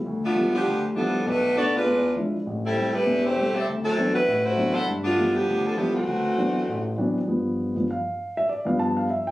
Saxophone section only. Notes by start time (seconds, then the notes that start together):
0.24 A3 B3 D4 F4
0.54 F3 B3 D4 G4
0.96 F3 B3 D4 A4
1.27 A3 D4 F#4 B4
1.56 B3 F#4 A4 D5
1.76 G#3 D4 F4 B4
2.65 G3 C4 E4 A4
2.93 A3 E4 G4 B4
3.24 A3 E4 G4 C5
3.55 C4 G4 A4 E5
3.84 F#3 C4 E4 A4
4.13 A3 E4 F#4 B4
4.43 A3 E4 F#4 C5
4.73 E4 A4 C5 F#5
5.04 A3 B3 D4 F4
5.34 F3 B3 D4 G4
5.65 F3 B3 D4 A4
5.76 F3 B3 D4 G4
5.95 E3 A3 C4 F#4